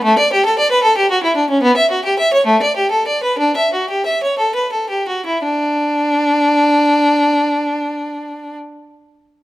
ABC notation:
X:1
M:6/8
L:1/16
Q:3/8=60
K:D
V:1 name="Violin"
A, d G A d B A G F E D C | B, e F G e c A, d G A d B | D e F G e c A B A G F E | D12- |
D12 |]